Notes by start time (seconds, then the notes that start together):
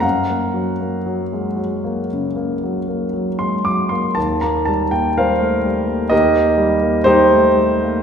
0.00 F#2 F5 F#5 A#5
0.30 A#3
0.54 F#3
0.81 A#3
1.06 F#3
1.33 G#3
1.56 F#3
1.84 A#3
2.13 C#3
2.36 A#3
2.63 F#3
2.88 A#3
3.13 F#3
3.39 G#3 C6
3.65 F#3 D6
3.89 A#3 C6
4.15 D#2 A5
4.41 A#3 A#5
4.65 G3 A5
4.91 A#3 G5
5.18 G3 A#4 C5 F5
5.40 A3
5.65 G3
5.87 A#3
6.10 D#2 G4 A#4 D#5
6.36 A#3
6.58 G3
6.82 A#3
7.04 G3 D#4 G4 C5
7.32 A3
7.57 G3
7.83 A#3